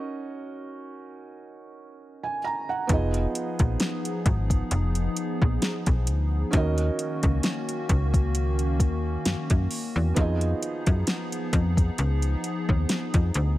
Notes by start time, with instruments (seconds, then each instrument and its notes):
Already playing: felt piano C#4 D#4 F#4 A#4 D#5
2.23 felt piano G#5
2.44 felt piano A#5
2.69 felt piano F#5
2.87 fm bass F1, analog synth pad F3 B3 D#4 G#4, felt piano B3 D#4 F4, kick, closed hi-hat
2.92 felt piano G#4 D#5
3.14 closed hi-hat
3.35 closed hi-hat
3.59 fm bass A#1, kick, closed hi-hat
3.80 snare, closed hi-hat
4.05 closed hi-hat
4.26 fm bass G#1, kick, closed hi-hat
4.50 kick, closed hi-hat
4.71 fm bass F1, closed hi-hat
4.95 closed hi-hat
5.17 closed hi-hat
5.42 fm bass A#1, kick
5.62 snare, closed hi-hat
5.86 fm bass B1, kick, closed hi-hat
6.07 fm bass D2, closed hi-hat
6.51 fm bass D#2, analog synth pad D#3 A#3 C#4 F#4, felt piano C#4 D#4 F#4, kick, closed hi-hat
6.55 felt piano A#4 D#5
6.78 closed hi-hat
6.99 closed hi-hat
7.23 fm bass C#2, kick, closed hi-hat
7.43 snare, closed hi-hat
7.69 closed hi-hat
7.89 fm bass C#2, kick, closed hi-hat
8.14 kick, closed hi-hat
8.35 closed hi-hat
8.59 closed hi-hat
8.80 fm bass D#2, kick, closed hi-hat
9.25 fm bass F#2, snare, closed hi-hat
9.50 fm bass F#2, kick, closed hi-hat
9.71 open hi-hat
9.96 fm bass E2
10.14 fm bass F2, analog synth pad F3 B3 D#4 G#4, felt piano B3 D#4 F4, kick, closed hi-hat
10.19 felt piano G#4 D#5
10.41 closed hi-hat
10.63 closed hi-hat
10.87 fm bass F#2, kick, closed hi-hat
11.07 snare, closed hi-hat
11.32 closed hi-hat
11.53 fm bass F2, kick, closed hi-hat
11.77 kick, closed hi-hat
11.98 fm bass C#2, closed hi-hat
12.22 closed hi-hat
12.44 closed hi-hat
12.69 fm bass D#2, kick
12.89 snare, closed hi-hat
13.14 fm bass F2, kick, closed hi-hat
13.34 fm bass D2, closed hi-hat